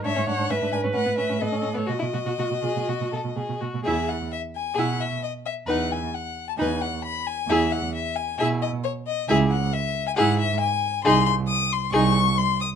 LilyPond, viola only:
\new Staff \with { instrumentName = "Viola" } { \time 4/4 \key e \major \tempo 4 = 133 cis''4 b'2 a'4 | fis'2.~ fis'8 r8 | e'8 r4. e'8 r4. | dis'8 r4. dis'8 r4. |
e'8 r4. e'8 r4. | e'8 r4. e'8 r4. | \key gis \phrygian dis'8 r4. dis'8 r4. | }